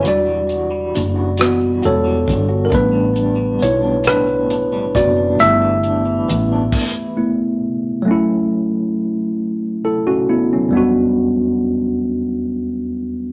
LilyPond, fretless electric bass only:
\new Staff \with { instrumentName = "Fretless electric bass" } { \clef bass \time 6/8 \key e \dorian \tempo 4. = 45 e,,4 fis,,4 e,,8 g,,8 | a,,4 b,,4. fis,,8 | g,,4 a,,8 r4. | r2. |
r2. | }